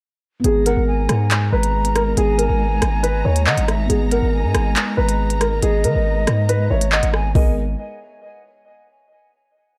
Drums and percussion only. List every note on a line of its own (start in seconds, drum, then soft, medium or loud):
0.44 closed hi-hat medium
0.66 closed hi-hat medium
1.09 cross-stick medium
1.09 closed hi-hat medium
1.31 clap loud
1.31 closed hi-hat medium
1.63 closed hi-hat medium
1.85 closed hi-hat medium
1.96 cross-stick medium
1.96 closed hi-hat medium
2.17 closed hi-hat medium
2.39 closed hi-hat medium
2.82 cross-stick medium
2.82 closed hi-hat medium
3.04 closed hi-hat medium
3.36 closed hi-hat medium
3.47 clap loud
3.57 closed hi-hat medium
3.68 cross-stick medium
3.68 closed hi-hat soft
3.90 closed hi-hat medium
4.11 closed hi-hat medium
4.55 cross-stick loud
4.55 closed hi-hat medium
4.76 clap loud
4.76 closed hi-hat medium
5.09 closed hi-hat medium
5.30 closed hi-hat medium
5.41 cross-stick medium
5.41 closed hi-hat medium
5.62 closed hi-hat medium
5.84 closed hi-hat medium
6.27 cross-stick loud
6.27 closed hi-hat medium
6.49 closed hi-hat medium
6.81 closed hi-hat medium
6.92 clap loud
7.03 closed hi-hat medium
7.14 cross-stick medium
7.35 kick loud
7.35 open hi-hat medium